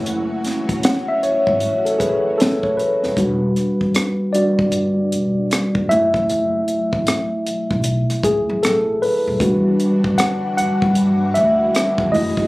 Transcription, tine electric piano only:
Already playing: G#3 A3 E4
0.85 F#5
1.08 E5
1.23 C#5
1.85 A4
1.98 G#4 B4
2.38 A4
2.63 C#5
2.77 B4
3.17 G3 D4 F#4
4.33 G3 D4 F#4 D5
5.89 F#3 A3 E4 E5
8.24 G#4
8.63 A4
9.02 B4
9.40 G3 D4 F#4
10.18 F#5
10.57 F#5
11.34 E5
12.12 G#3 A3 E4 D#5

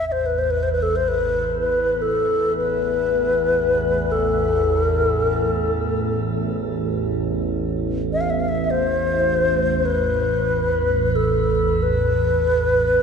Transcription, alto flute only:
0.09 C5 E5
0.26 B4
0.38 C5
0.50 B4
0.63 C5
0.73 B4
0.83 A4
0.96 C5
1.08 B4
1.60 B4
2.02 A4
2.57 B4
4.12 A4
4.86 A#4
5.06 A4
5.28 A#4
5.48 A4
8.13 E5
8.21 F5
8.30 E5
8.40 F5
8.49 E5
8.64 E5
8.71 C5
9.85 B4
11.16 A4
11.83 B4

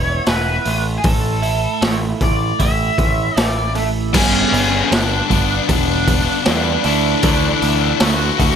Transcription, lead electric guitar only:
Already playing: C#5
0.28 B4
0.98 G#4
1.06 A4
1.84 C#5
2.22 D5
2.62 E5
3.39 D5
3.76 A3 A4
4.15 C#4 C#5
4.92 D4 D5
5.70 D4 D5
6.85 D4 D5
8.02 F#4 F#5

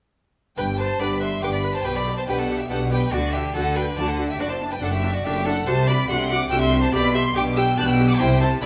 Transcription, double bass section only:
0.58 G1
1.01 G1
1.43 G1
1.85 B1
2.27 B1
2.69 B1
3.12 D2
3.54 D2
3.97 D2
4.39 F#1
4.81 F#1
5.24 F#1
5.66 C2
6.08 C2
6.51 C2
6.93 B1
7.35 B1
7.78 B1
8.20 C2
8.62 C2

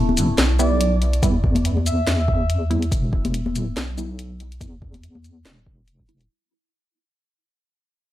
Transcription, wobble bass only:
Already playing: E1
0.38 B1
1.23 E2
2.07 E2
2.92 E1
3.51 D#1
3.76 B1
4.61 E2
5.45 E1

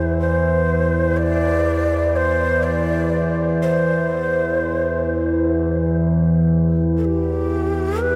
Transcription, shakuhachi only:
Already playing: C5
0.19 C5
1.17 D5
2.16 C5
2.63 D5
3.62 C5
6.97 A4
7.04 G4
8.01 B4

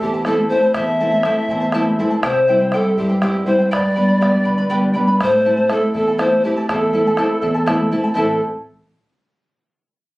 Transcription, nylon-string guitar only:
Already playing: A3 C4 E4
0.00 E2
0.26 A3 C4 E4
0.50 A3 C4 E4
0.77 E2
1.00 A3 C4 E4
1.24 A3 C4 E4
1.51 E2
1.75 A3 C4 E4
1.99 A3 C4 E4
2.24 C3
2.49 G3 C4 E4
2.73 G3 C4 E4
2.98 G2
3.22 G3 C4 E4
3.46 G3 C4 E4
3.73 G2
3.96 G3 B3 D4
4.21 G3 B3 D4
4.45 D3
4.69 G3 B3 D4
4.95 G3 B3 D4
5.21 A2
5.45 A3 C4 E4
5.70 A3 C4 E4
5.94 E2
6.18 A3 C4 E4
6.44 A3 C4 E4
6.70 E2
6.93 A3 C4 E4
7.17 A3 C4 E4
7.42 E2
7.68 A3 C4 E4
7.92 A3 C4 E4
8.15 A2 E3 A3 C4 E4

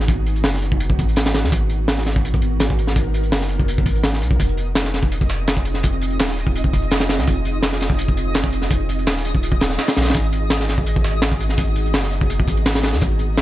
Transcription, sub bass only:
Already playing: G#1
0.45 F#1
0.99 G#1
1.44 D#2
1.52 G#1
3.32 F#1
3.86 G#1
4.22 B1
4.40 F1
6.20 D#1
6.74 F1
7.18 C2
7.28 F1
9.07 D#1
9.97 A#1
10.15 G#1
11.94 F#1
12.48 G#1
12.93 D#2
13.02 G#1

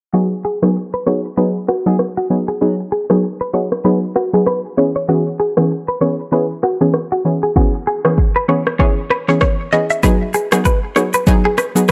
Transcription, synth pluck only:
0.13 F#3 B3 D#4 G#4
0.62 F#3 B3 D#4 G#4
1.06 F#3 B3 D#4 G#4
1.37 F#3 B3 D#4 G#4
1.86 F#3 B3 D#4 G#4
2.30 F#3 B3 D#4 G#4
2.61 F#3 B3 D#4 G#4
3.10 F#3 B3 D#4 G#4
3.53 F#3 B3 D#4 G#4
3.84 F#3 B3 D#4 G#4
4.33 F#3 B3 D#4 G#4
4.77 E3 B3 C#4 G#4
5.08 E3 B3 C#4 G#4
5.57 E3 B3 C#4 G#4
6.01 E3 B3 C#4 G#4
6.32 E3 B3 C#4 G#4
6.81 E3 B3 C#4 G#4
7.25 E3 B3 C#4 G#4
7.56 E3 B3 C#4 G#4
8.05 E3 B3 C#4 G#4
8.48 E3 B3 C#4 G#4
8.79 E3 B3 C#4 G#4
9.28 E3 B3 C#4 G#4
9.73 E3 B3 C#4 G#4
10.03 F#3 B3 D#4 G#4
10.52 F#3 B3 D#4 G#4
10.96 F#3 B3 D#4 G#4
11.27 F#3 B3 D#4 G#4
11.75 F#3 B3 D#4 G#4

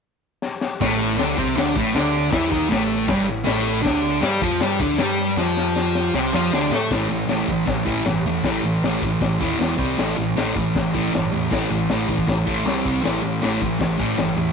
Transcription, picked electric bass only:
0.81 A1
1.17 D2
1.38 C2
1.56 D2
1.76 A1
1.95 D2
2.32 E2
2.52 D#2
2.70 A1
3.08 G1
3.27 A1
3.47 A1
3.85 D2
4.22 G2
4.41 F2
4.60 G2
4.80 D2
4.98 G2
5.36 F2
6.14 C2
6.33 F2
6.53 D2
6.71 A2
6.91 A1
7.09 A1
7.26 A1
7.48 A1
7.68 A1
7.86 A1
8.06 G1
8.24 E2
8.44 A1
8.62 A1
8.82 A1
9.02 A1
9.21 A1
9.41 D#2
9.59 E1
9.78 C2
9.98 A1
10.19 A1
10.37 A1
10.56 A1
10.75 A1
10.94 A1
11.14 G1
11.33 E2
11.52 A1
11.70 A1
11.90 A1
12.08 A1
12.28 A1
12.47 A1
12.65 C2
12.86 C2
13.05 A1
13.24 A1
13.43 A1
13.62 A1
13.80 A1
13.99 A1
14.18 G1
14.37 E2

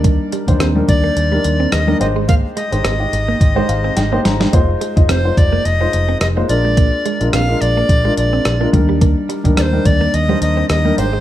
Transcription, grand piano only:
Already playing: G3 D4 D#4 A#4
0.47 G3 D4 D#4 C5
0.75 G3 D4 D#4 A#4
1.31 G3 D4 D#4 A#4
1.87 G3 D4 D#4 A#4
2.00 G#3 D#4 G4 C5
2.71 G#3 D#4 G4 C5
2.99 G#3 D#4 G4 D#5
3.55 G#3 D#4 G4 C5
3.68 F5
3.97 G5
4.12 G#3 D#4 G4 C5
4.25 A#5
4.53 G#3 D#4 F4 C5
4.96 G#3 D#4 F4 D#5
5.24 G#3 D#4 F4 C5
5.80 G#3 D#4 F4 C5
6.36 G#3 D#4 F4 C5
6.48 G#3 D4 F4 A#4
7.20 G#3 D4 F4 A#4
7.48 G#3 D4 F4 A#4
8.04 G#3 D4 F4 A#4
8.60 G#3 D4 F4 A#4
8.73 G3 D4 D#4 A#4
9.44 G3 D4 D#4 A#4
9.72 G3 D4 D#4 A#4
10.28 G3 D4 D#4 C5
10.84 G3 D4 D#4 A#4
10.97 G#3 D#4 G4 C5

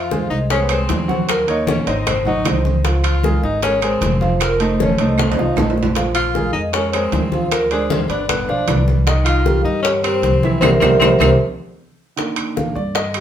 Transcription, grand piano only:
0.11 G#3 G#4 C5
0.51 G#3 G#4 C5
0.70 G#3 G#4 C5
1.08 F#3 F#4 F#5
1.47 A#3 A#4 C#5
1.87 C4 C5 D#5
2.26 F#3 F#4 F#5
2.46 C4 C5 D#5
2.85 F3 F4 F5
3.24 G#3 G#4 A#4
3.63 G#3 G#4 A#4
3.82 G#3 G#4 A#4
4.21 F3 F4 F5
4.60 A3 A4 C5
5.00 A3 A4 C5
5.38 F3 F4 F5
5.57 A3 A4 C5
5.96 F3 F4 F5
6.35 G#3 G#4 A#4
6.75 G#3 G#4 A#4
6.94 G#3 G#4 A#4
7.32 F3 F4 F5
7.71 G#3 G#4 C5
8.09 B3 B4 D5
8.48 F3 F4 F5
8.69 B3 B4 D5
9.07 D#3 D#4 D#5
9.46 G3 G4 A#4
9.85 G3 G4 A#4
10.04 G3 G4 A#4
10.44 E3 E4 E5
10.63 G4 A#4 C5
10.82 G4 A#4 C5
11.01 G4 A#4 C5
11.20 G4 A#4 C5
12.16 D#3 A#3 D4
12.56 F5
12.76 D5
12.95 D#5
13.15 G4

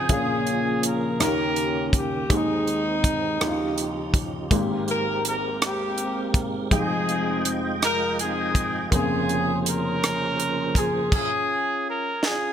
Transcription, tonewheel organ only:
Already playing: C#3
0.09 F3 A#3 G#4
1.20 D#3 A#3 G4
2.30 G#3 C4 G#4
3.40 C#3 F3 D#4 G4
4.51 G#3 C4 A#4
6.72 F4 D#5 G5
8.92 C#3 F3 A#3 G#4 C5

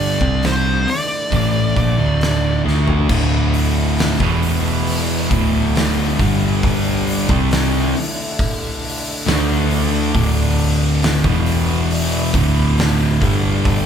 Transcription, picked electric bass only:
Already playing: G1
0.21 C2
1.32 A1
1.76 A#1
1.99 D1
2.65 D2
3.10 D1
4.20 E1
5.31 D1
6.20 G1
7.29 C2
9.26 D2
10.15 D1
11.25 E1
12.34 D1
13.22 G1

